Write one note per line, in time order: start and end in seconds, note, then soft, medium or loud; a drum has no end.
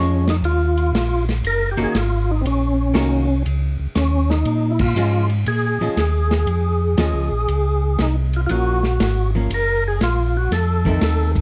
0.00 0.42 F2 medium
0.00 0.25 F3 soft
0.00 0.25 G#3 medium
0.00 0.25 C#4 medium
0.00 0.28 C#4 medium
0.27 0.37 D#4 medium
0.27 snare medium
0.27 ride soft
0.43 0.92 D#2 medium
0.43 1.25 F4 loud
0.43 ride medium
0.77 ride soft
0.93 1.43 A#1 medium
0.93 snare medium
0.93 hi-hat pedal medium
0.93 ride medium
1.29 snare soft
1.29 ride soft
1.44 1.76 F#1 medium
1.44 1.70 A#4 loud
1.44 ride medium
1.71 1.79 G4 medium
1.77 1.86 F#1 soft
1.77 1.93 D#3 medium
1.77 1.93 A#3 medium
1.77 1.93 C#4 medium
1.77 1.93 F#4 medium
1.83 1.98 G#4 medium
1.95 2.44 G#1 medium
1.95 2.31 F4 medium
1.95 snare medium
1.95 hi-hat pedal soft
1.95 ride medium
2.31 2.42 D#4 medium
2.41 2.94 A#1 medium
2.41 2.46 C4 medium
2.45 3.43 C#4 medium
2.45 ride medium
2.94 3.44 C2 medium
2.94 3.25 D#3 medium
2.94 3.26 A#3 medium
2.94 3.26 C#4 medium
2.94 3.26 F#4 medium
2.94 snare medium
2.94 hi-hat pedal medium
2.94 ride medium
3.45 3.77 C#2 medium
3.45 ride medium
3.80 3.88 C#2 soft
3.95 4.45 D#2 medium
3.95 4.31 C#4 medium
3.95 snare medium
3.95 hi-hat pedal medium
3.95 ride medium
4.30 4.73 D#4 medium
4.30 snare soft
4.45 4.95 A#2 medium
4.45 ride medium
4.71 4.80 E4 medium
4.79 5.28 F4 loud
4.79 kick medium
4.79 crash medium
4.95 5.45 G#2 loud
4.95 5.28 F3 medium
4.95 5.28 G#3 medium
4.95 5.28 C#4 medium
4.95 hi-hat pedal medium
5.30 ride soft
5.46 5.79 A#2 medium
5.46 8.07 G#4 loud
5.46 ride medium
5.81 5.89 A#2 soft
5.81 5.96 F3 medium
5.81 5.96 G#3 medium
5.81 5.97 C#4 medium
5.96 6.46 D#2 medium
5.96 snare medium
5.96 hi-hat pedal soft
5.96 ride medium
6.31 snare medium
6.31 ride soft
6.47 6.96 F2 medium
6.47 ride medium
6.97 7.14 D#2 medium
6.97 7.29 F3 medium
6.97 7.29 G#3 medium
6.97 7.30 C#4 medium
6.97 snare medium
6.97 hi-hat pedal medium
6.97 ride medium
7.14 7.31 C#2 medium
7.30 7.47 A#1 medium
7.48 7.97 C#2 medium
7.48 ride medium
7.99 8.48 C2 medium
7.99 8.16 D#4 medium
7.99 snare medium
7.99 hi-hat pedal soft
7.99 ride medium
8.33 8.41 F4 medium
8.33 ride soft
8.46 8.98 A#1 medium
8.46 8.80 F3 soft
8.46 8.50 F4 medium
8.46 ride medium
8.51 8.81 A#3 medium
8.51 8.81 C#4 medium
8.51 9.31 F#4 medium
8.83 snare soft
8.99 9.48 G#1 loud
8.99 snare medium
8.99 hi-hat pedal medium
8.99 ride medium
9.35 9.49 F3 medium
9.35 9.49 A#3 medium
9.35 9.50 C#4 medium
9.50 9.99 F#1 medium
9.50 9.84 A#4 loud
9.50 ride medium
9.88 10.01 G#4 medium
10.00 10.49 A#1 medium
10.00 10.37 F4 medium
10.00 snare medium
10.00 hi-hat pedal soft
10.00 ride medium
10.37 10.53 F#4 medium
10.51 11.00 F2 medium
10.51 11.32 A4 loud
10.51 snare soft
10.51 ride medium
10.85 11.41 D#3 medium
10.85 11.41 A3 medium
10.85 11.41 C4 medium
10.85 kick medium
11.01 11.41 D#2 medium
11.01 snare medium
11.01 hi-hat pedal medium
11.01 ride medium
11.36 kick soft
11.36 ride soft